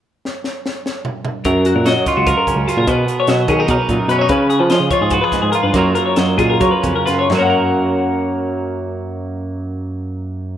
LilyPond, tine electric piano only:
\new Staff \with { instrumentName = "Tine electric piano" } { \clef bass \time 7/8 \key fis \major \tempo 4 = 146 r2. r8 | fis,8. ais,8 fis16 r16 cis,8 r8 cis,16 r16 ais,16 | b,8 r8 b,8 dis8 b,16 r16 ais,16 r16 b,8 | cis8. eis8 cis16 r16 gis,8 r8 gis,16 r16 g,16 |
fis,8 r8 fis,8 ais,8 fis16 r16 eis,16 r16 fis,8 | fis,2.~ fis,8~ | fis,2.~ fis,8 | }